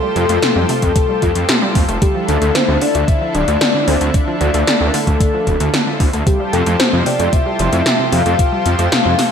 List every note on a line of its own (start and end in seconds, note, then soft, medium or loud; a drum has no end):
0.00 1.98 F3 medium
0.00 0.13 G3 medium
0.00 6.23 F4 medium
0.00 1.98 G4 medium
0.00 0.68 A4 loud
0.00 6.23 A4 medium
0.00 1.98 C5 medium
0.16 0.25 F2 loud
0.16 0.22 C3 medium
0.16 closed hi-hat medium
0.29 0.39 F2 medium
0.29 0.36 A3 medium
0.29 closed hi-hat medium
0.42 0.49 C3 medium
0.42 snare loud
0.42 closed hi-hat medium
0.56 0.65 F2 medium
0.56 0.68 G3 medium
0.69 0.80 C3 loud
0.69 1.71 A4 loud
0.69 open hi-hat medium
0.82 0.92 F2 medium
0.82 0.89 A3 medium
0.82 kick medium
0.82 closed hi-hat medium
0.96 1.08 C3 medium
0.96 kick loud
0.96 closed hi-hat medium
1.09 1.19 G3 medium
1.22 1.32 F2 loud
1.22 1.35 F4 medium
1.22 kick medium
1.22 closed hi-hat medium
1.35 1.45 F2 medium
1.35 1.46 F3 medium
1.35 closed hi-hat medium
1.49 1.59 C3 loud
1.49 snare loud
1.49 closed hi-hat loud
1.62 1.73 G3 loud
1.75 1.85 F2 loud
1.75 1.86 A3 medium
1.75 kick loud
1.75 open hi-hat medium
1.88 1.98 F1 medium
1.88 1.99 A3 loud
1.88 closed hi-hat medium
2.02 2.14 D3 medium
2.02 6.23 D3 medium
2.02 6.23 D4 medium
2.02 6.23 E4 medium
2.02 2.26 G4 loud
2.02 kick loud
2.02 closed hi-hat medium
2.15 2.26 F3 medium
2.28 2.38 D2 medium
2.28 2.35 D3 medium
2.28 2.56 A4 loud
2.28 closed hi-hat medium
2.42 2.51 D2 medium
2.42 2.48 A3 medium
2.42 closed hi-hat medium
2.55 2.61 D3 medium
2.55 2.83 C5 loud
2.55 snare loud
2.55 closed hi-hat medium
2.68 2.78 D2 medium
2.68 2.79 D3 medium
2.81 2.92 D3 loud
2.81 3.07 D5 loud
2.81 open hi-hat medium
2.95 3.04 D2 medium
2.95 3.01 A3 medium
2.95 closed hi-hat medium
3.08 3.21 D3 medium
3.08 3.36 E5 loud
3.08 kick loud
3.08 closed hi-hat medium
3.21 3.32 F3 medium
3.34 3.44 D1 medium
3.34 3.41 D3 medium
3.34 3.60 D5 loud
3.34 closed hi-hat medium
3.48 3.57 D2 medium
3.48 3.54 A3 medium
3.48 closed hi-hat medium
3.61 3.67 D3 medium
3.61 3.89 D5 loud
3.61 snare loud
3.61 closed hi-hat medium
3.74 3.85 D3 medium
3.87 3.97 D2 loud
3.87 3.98 D3 loud
3.87 4.15 C5 loud
3.87 open hi-hat medium
4.01 4.10 D2 medium
4.01 4.07 A3 medium
4.01 closed hi-hat medium
4.14 4.27 D3 medium
4.14 4.88 D5 loud
4.14 kick loud
4.14 closed hi-hat medium
4.27 4.38 F3 medium
4.41 4.50 D2 loud
4.41 4.47 D3 medium
4.41 closed hi-hat medium
4.54 4.64 D2 medium
4.54 4.60 A3 medium
4.54 closed hi-hat medium
4.67 4.74 D3 medium
4.67 snare loud
4.67 closed hi-hat medium
4.81 4.90 D2 medium
4.81 4.91 D3 medium
4.87 4.95 A#4 medium
4.94 5.04 D3 loud
4.94 6.00 A4 loud
4.94 open hi-hat medium
5.07 5.17 D2 medium
5.07 5.14 A3 medium
5.07 kick medium
5.07 closed hi-hat medium
5.20 5.33 D3 medium
5.20 kick loud
5.20 closed hi-hat medium
5.34 5.44 F3 medium
5.47 5.56 D1 loud
5.47 5.53 D3 medium
5.47 kick medium
5.47 closed hi-hat medium
5.60 5.70 D2 medium
5.60 5.67 A3 medium
5.60 closed hi-hat medium
5.74 5.80 D3 medium
5.74 snare loud
5.74 closed hi-hat medium
5.87 5.97 D3 medium
6.00 6.09 D2 loud
6.00 6.11 D3 loud
6.00 kick loud
6.00 open hi-hat medium
6.13 6.23 D2 medium
6.13 6.20 A3 medium
6.13 closed hi-hat medium
6.27 6.39 C3 medium
6.27 9.32 F3 medium
6.27 9.32 F4 medium
6.27 9.32 G4 medium
6.27 6.51 G4 medium
6.27 9.32 A4 medium
6.27 9.32 C5 medium
6.27 kick loud
6.27 closed hi-hat loud
6.40 6.50 G3 medium
6.53 6.63 F2 loud
6.53 6.59 C3 medium
6.53 6.78 A4 medium
6.53 closed hi-hat medium
6.66 6.76 F2 medium
6.66 6.73 A3 medium
6.66 closed hi-hat medium
6.80 6.86 C3 medium
6.80 6.92 C5 medium
6.80 snare loud
6.80 closed hi-hat medium
6.93 7.02 F2 medium
6.93 7.04 C3 medium
7.06 7.17 C3 loud
7.06 7.34 D5 loud
7.06 open hi-hat medium
7.20 7.29 F2 medium
7.20 7.26 A3 medium
7.20 closed hi-hat medium
7.33 7.45 C3 medium
7.33 8.14 E5 loud
7.33 kick loud
7.33 closed hi-hat medium
7.46 7.57 G3 medium
7.59 7.69 F1 loud
7.59 7.66 C3 medium
7.59 closed hi-hat medium
7.73 7.82 F2 medium
7.73 7.79 A3 medium
7.73 closed hi-hat medium
7.86 7.92 C3 medium
7.86 snare loud
7.86 closed hi-hat loud
7.99 8.10 C3 medium
8.12 8.22 F2 loud
8.12 8.23 C3 loud
8.12 9.32 F5 loud
8.12 open hi-hat medium
8.26 8.35 F2 medium
8.26 8.32 A3 medium
8.26 closed hi-hat medium
8.39 8.52 C3 medium
8.39 kick loud
8.39 closed hi-hat loud
8.52 8.63 G3 medium
8.66 8.75 F2 loud
8.66 8.72 C3 medium
8.66 closed hi-hat medium
8.79 8.88 F2 medium
8.79 8.85 A3 medium
8.79 closed hi-hat medium
8.92 8.98 C3 medium
8.92 snare loud
8.92 closed hi-hat loud
9.05 9.15 F2 medium
9.05 9.16 C3 medium
9.18 9.29 C3 loud
9.18 snare medium
9.18 open hi-hat medium